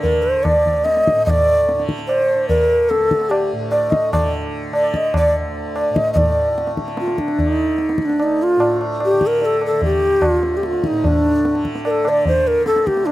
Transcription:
Already playing: D2 A2 D3
0.02 A#4, tabla tin, tabla ge
0.22 C5
0.44 D5, tabla na, tabla ge
0.53 D2
0.66 tabla ge
0.85 D#5, tabla te
0.97 tabla te
1.07 tabla ke
1.12 A2
1.17 tabla te
1.26 D#5, tabla tin, tabla ge
1.30 D5
1.69 tabla te
1.74 D3
1.79 tabla te
1.89 tabla ke
1.99 tabla te
2.07 C5, tabla na
2.34 D3
2.49 A#4, tabla tin, tabla ge
2.90 A4, tabla te
2.94 D2
3.01 tabla te
3.11 tabla ke
3.21 tabla te
3.30 G4, tabla na
3.52 A2
3.71 D5, tabla na
3.91 D#5, tabla ke
4.11 D3 D5, tabla na, tabla ge
4.71 D3, tabla na
4.75 D5
4.94 D#5, tabla ke
5.14 D5, tabla na, tabla ge
5.28 D2
5.76 D5, tabla na
5.90 A2
5.95 D#5, tabla ke
6.13 D#5, tabla tin, tabla ge
6.17 A2 D5
6.58 tabla te
6.67 tabla te
6.77 D3, tabla ke
6.88 tabla te
6.97 F4, tabla te
7.08 tabla te
7.18 D4, tabla ke
7.28 tabla te
7.35 D3, tabla tin, tabla ge
7.40 D4
7.51 D#4
7.78 tabla te
7.89 tabla te
7.94 D2, tabla ke
8.02 D4 D#4
8.09 tabla te
8.20 D#4, tabla na
8.43 F4
8.57 A2, tabla na
8.81 tabla na
9.00 tabla na
9.05 G4
9.13 D3
9.21 tabla ke
9.27 A#4
9.42 A4, tabla tin
9.61 tabla na
9.66 A4
9.72 D3
9.82 G4, tabla tin, tabla ge
10.22 tabla na, tabla ge
10.32 D2 F4
10.43 tabla te
10.57 G4
10.63 F4, tabla te
10.73 tabla te
10.84 D#4, tabla ke
10.90 A2, tabla te
11.04 D4, tabla tin, tabla ge
11.45 D3, tabla te
11.55 tabla te
11.65 tabla ke
11.75 tabla te
11.85 A#4, tabla na
11.90 A4
12.05 D3 D5, tabla na
12.25 C5, tabla tin, tabla ge
12.47 A#4
12.66 D2 A4, tabla te
12.76 tabla te
12.87 G4, tabla ke
12.97 tabla te
13.06 D4, tabla na

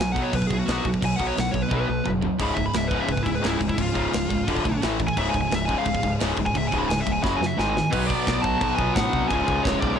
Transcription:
Already playing: G#5
0.00 B1 B2 F#3, snare
0.12 B2 F#3 B3 F#5, kick
0.17 B2 F#3 B3, crash
0.22 C#5
0.32 B1 B2 B4, kick, crash
0.36 B2 F#3
0.42 kick
0.47 B1 G#4, kick, crash
0.53 B2 F#3
0.59 F#4
0.68 B1 B2 F#3 B3 F#4, snare, crash
0.85 B1 B2 F#3, kick, crash
0.94 kick
1.02 B1 B2 F#3 G#5, kick, crash
1.16 B1 B2 F#5, kick
1.20 F#3 B3, crash
1.27 C#5
1.37 B1 B2 F#3 F#5, snare, crash
1.51 B1 B2 F#3 C#5, kick, crash
1.62 B4
1.71 B1 B2 F#3 B3, kick, high tom
1.76 B4
1.88 B1 B2 F#3
2.06 F#1 B2 F#3, mid tom
2.22 B2 F#3, floor tom
2.38 C#1 C#2 G#2 C#3 G#3 F4 G#4, kick, splash, crash
2.43 B5
2.54 C#1 C#2 G#2 E5, kick, crash
2.66 B5
2.73 C#1 C#2 G#2 E5, snare, crash
2.88 C#2 B4, kick, crash
2.92 G#2 C#3
3.01 E5
3.08 C#1 C#2 G#2 B4, kick, crash
3.17 kick
3.23 C#1 C#2 G#2 E4, kick, crash
3.35 B4
3.42 C#1 C#2 G#2 C#3 E4, snare, crash
3.59 C#1 C#2 G#2, kick, crash
3.69 E4, kick
3.78 C#1 C#2 G#2 F4, kick, crash
3.94 C#1 C#2 G#2 C#3, kick, crash
4.13 C#1 C#2 G#2, snare, crash
4.30 C#1 C#2 G#2, kick, crash
4.47 D1 D2 A2 D3 D4 A4, kick, crash
4.57 kick
4.65 B1 D2 A2, kick, crash
4.82 A1 A2 E3 A3 E4, snare, crash
5.00 A2 E3, kick, crash
5.07 G#5, kick
5.17 C#1 C#2 G#2 C#3 G#3 F4 G#4 E5, kick, crash
5.29 G#5
5.34 C#1 C#2 G#2, kick, crash
5.41 G#5
5.51 C#1 C#2 G#2 E5, snare, crash
5.65 C#2 G#2 G#5, kick, crash
5.70 C#3
5.78 F5
5.85 C#1 C#2 G#2, kick, crash
5.95 kick
6.03 C#1 C#2 G#2, kick, crash
6.20 C#1 C#2 G#2 C#3, snare, crash
6.37 C#1 C#2 G#2, kick, crash
6.46 G#5, kick
6.55 C#1 C#2 G#2 E5, kick, crash
6.67 G#5
6.72 C#1 C#2 G#2 C#3, kick, crash
6.79 B5
6.89 C#1 C#2 G#2 G#5, snare, crash
7.00 E5
7.06 C#1 C#2 G#2, kick, crash
7.12 G#5
7.22 F#1 F#2 C#3 F#3 C#4 F#4 B5, kick, snare
7.36 G#5
7.41 F#2 C#3, snare
7.46 E5
7.58 G#1 G#2 D#3 G#3 D#4 G#4 G#5, snare
7.70 G#5
7.76 G#2 D#3, snare
7.91 B1 B2 F#3 B4, kick, crash
7.96 B3
8.06 B3 D5, kick
8.27 B1, kick, snare, crash
8.42 B1 F#4 A5, kick
8.58 B1 B2 F#3 F#4 A5, kick, crash
8.63 B3
8.75 B1 B3 F4 G#5, kick
8.80 B2 F#3
8.94 A2 B2 D4 F#5, kick, snare, crash
8.98 F#3 B3
9.13 C2, kick
9.28 C#1 C#2 F4 G#5, kick, crash
9.33 G#2 C#3
9.48 C#2, kick
9.63 C#1 G#3 C#5, kick, snare, crash
9.79 B1 B3 D5, kick
9.96 C#5

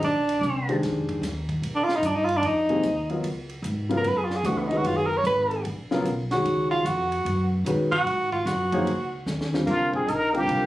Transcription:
0.02 A#1 D4, ride
0.29 ride
0.41 C2, hi-hat pedal
0.68 D#3 G#3 D4 G4 C5, ride
0.82 F2, snare, ride
1.09 kick, ride
1.21 D#2, snare, hi-hat pedal, ride
1.49 kick, ride
1.62 A#2, ride
1.75 D4
1.84 F4
1.89 snare
1.96 D#4
2.02 G2 D4, hi-hat pedal, ride
2.15 D#4
2.24 F4
2.29 ride
2.37 D4
2.42 F2 D#4, ride
2.69 C3 F3 A#3 D#4 G#4, ride
2.83 D#2, hi-hat pedal, ride
3.09 F#3 B3 F4 A#4 D#5, ride
3.23 C#2, ride
3.49 ride
3.62 G#2, hi-hat pedal, ride
3.89 C#3 F#3 B3 F4 A#4, ride
3.97 A#4
4.03 F#2, ride
4.07 B4
4.17 G#4
4.24 F4
4.30 snare
4.36 G#4
4.44 C#2 E3 A3 D4 F#4 G4 C5, hi-hat pedal, ride
4.58 B3
4.67 G#3 D#4
4.71 D#3 C#4 F#4 B4, ride
4.77 F#4
4.84 F#1 F4, ride
4.97 G#4
5.06 A#4
5.17 C#5
5.24 G#1 B4, hi-hat pedal, ride
5.51 ride
5.64 A#1, ride
5.91 C#3 F#3 B3 F4 A#4, snare
6.04 B1, hi-hat pedal, ride
6.31 D#3 G#3 C#4 F#4 C#5, snare, ride
6.44 C#2, ride
6.71 F4
6.84 F2 F#4, hi-hat pedal, ride
7.12 ride
7.25 F#2, ride
7.64 A#2 D#3 G#3 C#4 F#4 B4, hi-hat pedal, ride
7.91 F#4, kick, ride
8.04 G#2, ride
8.32 F4, kick
8.46 F#2 F#4, snare, hi-hat pedal, ride
8.72 F3 A#3 D#4 G#4 C#5, kick, ride
8.85 C#2, ride
9.26 D#2, snare, hi-hat pedal
9.41 snare
9.52 D3 G3 C4 F4 C5, snare
9.66 C2 A#3 F4, kick, crash
9.92 C4 G#4, kick
10.05 A#1 D#4, hi-hat pedal, ride
10.09 A#4
10.33 D3 G3 A#3 C4 F4 G4 A#4, ride
10.47 C2, ride

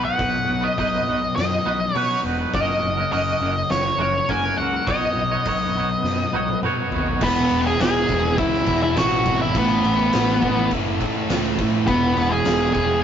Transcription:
Already playing: B1 B2 F#3 B3
0.04 B3 D#4 F#4 B4 F#5
0.18 B1 B2 F#3 B3 D#4 F#4 B4, kick, open hi-hat
0.48 B1 B2 F#3
0.61 B3 D#4 F#4 B4 D#5
0.77 B1 B2 F#3 B3 D#4 F#4 B4 D#5, kick, open hi-hat
1.06 B1 B2 F#3 B3 D#4 F#4 B4
1.21 muted clean electric guitar stroke
1.35 F#2 B2 F#3 D#5, snare, open hi-hat
1.64 B1 B2 F#3 B3 D#4 F#4
1.68 B4
1.81 muted clean electric guitar stroke
1.94 B2 F#3 B3 D#4 F#4 B4 C#5, open hi-hat
2.09 B3 D#4 F#4 B4
2.24 E1 B2 F#3 B3 D#4 F#4 B4
2.39 B3 D#4 F#4 B4
2.53 F#1 F#2 C#3 F#3 A#3 C#4 F#4 A#4 D#5, kick, open hi-hat
2.83 F#1 F#2 C#3
2.97 C#4 F#4 A#4
3.11 F#1 F#2 C#3 F#3 A#3 C#4 F#4 A#4 D#5, open hi-hat
3.40 F#1 F#2 C#3 A#3 C#4 F#4 A#4
3.56 muted clean electric guitar stroke
3.69 F#1 F#2 C#3 C#5, snare, open hi-hat
3.98 F#1 F#2 C#3 A#3 C#4 F#4 A#4 C#5
4.15 muted clean electric guitar stroke
4.27 F#1 F#2 C#3 F#3 A#3 C#4 F#4 A#4 G#5, kick, open hi-hat
4.43 C#4 F#4 A#4
4.56 C#2 F#2 C#3 F#3 A#3 C#4 F#5
4.61 F#4 A#4
4.74 C#4 F#4 A#4
4.87 B1 B2 F#3 B3 D#4 F#4 C#5 D#5, kick, open hi-hat
5.15 B1 B2 F#3
5.31 D#4 F#4 C#5
5.45 B1 B2 F#3 B3 D#4 F#4 C#5, kick, open hi-hat
5.74 B1 B2 F#3 B3 D#4
5.78 F#4 C#5
5.91 muted clean electric guitar stroke
6.03 F#2 B2 F#3, snare
6.33 B1 B2 F#3 B3 D#4 F#4 C#5, high tom
6.48 muted clean electric guitar stroke, high tom
6.62 B2 F#3 B3 D#4 F#4 C#5, mid tom
6.78 D#4 F#4 C#5
6.91 D#2 B2 F#3 B3 D#4 F#4, floor tom
6.95 C#5
7.06 F#4 C#5, floor tom
7.11 D#4
7.21 E1 E2 B2 E3 B3 B4, kick, crash
7.51 E1, crash
7.66 G#4 G#5, snare
7.79 E1 E2 B2 E3 G#4 G#5, snare, crash
8.09 E1 E2 B2 E3, kick, crash
8.38 C#2 E2 B2 E3 E4 E5, kick, crash
8.54 snare
8.66 E2 B2 E3, kick, crash
8.71 E2
8.83 E4 E5
8.97 A1 E2 B2 E3 F#4 F#5, snare, crash
9.25 G#1 E2 B2 E3, kick, crash
9.42 E4 E5
9.55 A1 A2 E3 A3 B3 B4, kick, crash
9.84 A1, crash
10.13 A1 A2 E3 A3, snare, crash
10.42 A1 A2 E3 A3, kick, crash
10.71 F#1 A2 E3 A3, kick, crash
11.00 A2 E3 A3, kick, crash
11.04 A2
11.30 C#2 A2 E3 A3, snare, crash
11.58 A2 E3 A3, kick, crash
11.87 E1 E2 B2 E3 B3 B4, kick, crash
12.17 E1, crash
12.31 G#4 G#5
12.45 E1 E2 B2 E3, snare, crash
12.73 E1 E2 B2 E3 G#4 G#5, kick, crash

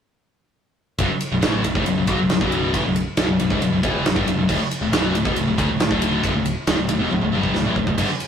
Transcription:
0.98 B0 B1 F#2, kick, ride
1.10 muted picked electric bass stroke, muted distorted electric guitar stroke
1.21 ride
1.32 B0 B1 F#2
1.42 A1 A2 E3 A3, snare, ride
1.64 B0 B1 F#2, ride
1.75 D1 D2 A2, kick
1.86 B0 B1 F#2, ride
1.97 B0 B1 F#2
2.07 B1 B2 F#3, kick, ride
2.19 B0 B1 F#2
2.29 B0 B1 F#2, snare, ride
2.41 B0 B1 F#2 B2, kick
2.52 ride
2.74 A1 A2 E3, kick, ride
2.85 B0 B1 F#2
2.96 ride
3.17 B0 B1 F#2, snare, ride
3.28 B0 B1 F#2
3.39 B0 B1 F#2, ride
3.50 C#1 C#2 G#2, kick
3.61 B0 B1 F#2, ride
3.72 B0 B1 F#2
3.83 E1 E2 B2 E3, kick, ride
4.05 B0 B1 F#2, snare, ride
4.15 G1 G2 D3, kick
4.26 B0 B1 F#2, ride
4.37 B0 B1 F#2
4.48 D1 D2 A2, kick, crash
4.59 muted distorted electric guitar stroke, muted picked electric bass stroke
4.71 ride
4.81 D1 D2 A2
4.92 B0 B1 F#2 B2, snare, ride
5.14 D1 D2 A2, ride
5.25 E1 E2 B2, kick
5.36 D1 D2 A2, ride
5.47 D1 D2 A2
5.58 D2 D3 A3, kick, ride
5.69 D1 D2 A2
5.80 D1 D2 A2, snare, ride
5.90 D1 D2 A2 D3, kick
6.02 ride
6.24 B0 B1 F#2, kick, ride
6.34 D1 D2 A2
6.45 ride
6.67 D1 D2 A2, snare, ride
6.78 D1 D2 A2
6.89 D1 D2 A2, ride
7.00 E1 E2 B2
7.11 D1 D2 A2, high tom
7.21 D1 D2 A2, high tom
7.33 G1 G2 D3 G3
7.43 kick
7.54 D1 D2 A2, snare
7.65 A1 A2 E3
7.76 D1 D2 A2, kick
7.87 D1 D2 A2, kick
7.98 G1 G2 D3, kick, crash, ride
8.09 muted picked electric bass stroke, muted distorted electric guitar stroke
8.20 ride

